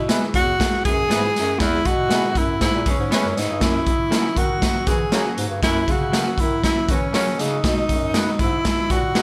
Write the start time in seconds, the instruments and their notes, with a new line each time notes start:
Already playing: bass clarinet B2
0.08 reed electric piano G#3 B3 E4 G#4, clean electric guitar B3 E4 G#4 B4, snare, closed hi-hat
0.34 bass clarinet E2, tenor saxophone F#4, glockenspiel F#6, kick, closed hi-hat
0.59 reed electric piano G#3 B3 E4 G#4, kick, snare, closed hi-hat
0.72 bass clarinet F#2
0.84 bass clarinet F#2, horn section E3 B3 G#4, tenor saxophone G#4, glockenspiel G#6, kick, closed hi-hat
1.08 bass clarinet G#2, horn section E3 B3 G#4, reed electric piano G#3 B3 E4 G#4, clean electric guitar B3 E4 G#4 B4, snare, closed hi-hat
1.36 bass clarinet F#2, snare, closed hi-hat
1.58 bass clarinet E2, reed electric piano G#3 B3 E4 G#4, tenor saxophone E4, glockenspiel E6, kick, snare, closed hi-hat
1.85 bass clarinet B2, tenor saxophone F#4, glockenspiel F#6, kick, closed hi-hat
2.09 reed electric piano G#3 B3 E4 G#4, clean electric guitar B3 E4 G#4 B4, snare, closed hi-hat
2.35 bass clarinet F#2, tenor saxophone E4, glockenspiel E6, kick, closed hi-hat
2.60 bass clarinet G#2, reed electric piano G#3 B3 E4 G#4, tenor saxophone E4, glockenspiel E6, kick, snare, closed hi-hat
2.75 bass clarinet A#2
2.86 horn section E3 B3 G#4, glockenspiel C#6, kick, closed hi-hat
2.90 tenor saxophone C#4
2.99 bass clarinet G#2
3.10 horn section E3 B3 G#4, reed electric piano G#3 B3 E4 B4, clean electric guitar B3 E4 G#4 B4, tenor saxophone C#4, glockenspiel C#6, snare, closed hi-hat
3.24 bass clarinet F#2
3.36 bass clarinet G#2, tenor saxophone D#4, glockenspiel D#6, snare, closed hi-hat
3.49 bass clarinet G2
3.60 bass clarinet F#2, reed electric piano F#3 A#3 C#4 F#4, tenor saxophone E4, glockenspiel E6, kick, snare, closed hi-hat
3.86 kick, closed hi-hat
4.10 reed electric piano F#3 A#3 C#4 D#4, clean electric guitar A#3 C#4 F#4 A#4, snare, closed hi-hat
4.36 bass clarinet D#3, tenor saxophone F#4, glockenspiel F#6, kick, closed hi-hat
4.60 reed electric piano F#3 A#3 C#4 F#4, kick, snare, closed hi-hat
4.75 bass clarinet E3
4.86 horn section C#3 A#3 F#4, bass clarinet E3, tenor saxophone G#4, glockenspiel G#6, kick, closed hi-hat
5.12 horn section C#3 A#3 F#4, bass clarinet F#3, reed electric piano F#3 A#3 C#4 F#4, clean electric guitar A#3 C#4 F#4 A#4, snare, closed hi-hat
5.38 bass clarinet G#2, closed hi-hat
5.49 bass clarinet G2
5.62 bass clarinet F#2, reed electric piano F#3 A#3 C#4 F#4, tenor saxophone E4, glockenspiel E6, kick, snare, closed hi-hat
5.88 bass clarinet C#3, tenor saxophone F#4, glockenspiel F#6, kick, closed hi-hat
6.12 reed electric piano F#3 A#3 C#4 F#4, clean electric guitar A#3 C#4 F#4 A#4, snare, closed hi-hat
6.38 bass clarinet D#3, tenor saxophone E4, glockenspiel E6, kick, closed hi-hat
6.62 reed electric piano F#3 A#3 C#4 F#4, tenor saxophone E4, glockenspiel E6, kick, snare, closed hi-hat
6.76 bass clarinet E3
6.88 horn section C#3 A#3 F#4, bass clarinet E3, tenor saxophone C#4, glockenspiel C#6, kick, closed hi-hat
7.12 horn section C#3 A#3 F#4, reed electric piano F#3 A#3 C#4 F#4, bass clarinet F#3, clean electric guitar A#3 C#4 F#4 A#4, tenor saxophone C#4, glockenspiel C#6, snare, closed hi-hat
7.38 bass clarinet C#3, tenor saxophone D#4, glockenspiel D#6, snare, closed hi-hat
7.64 bass clarinet B2, reed electric piano G#3 B3 D#4 F#4, kick, snare, closed hi-hat
7.89 bass clarinet F#2, kick, closed hi-hat
8.14 reed electric piano G#3 B3 D#4 F#4, clean electric guitar G#3 D#4 F#4 B4, snare, closed hi-hat
8.39 bass clarinet G#2, tenor saxophone E4, glockenspiel E6, kick, closed hi-hat
8.65 reed electric piano G#3 B3 D#4 F#4, kick, snare, closed hi-hat
8.78 bass clarinet A#2
8.90 bass clarinet A#2, horn section D#3 B3 F#4, tenor saxophone F#4, glockenspiel F#6, kick, closed hi-hat
9.14 bass clarinet B2, horn section D#3 B3 G#4, clean electric guitar G#3 D#4 F#4 B4, reed electric piano G#3 B3 D#4 F#4, snare, closed hi-hat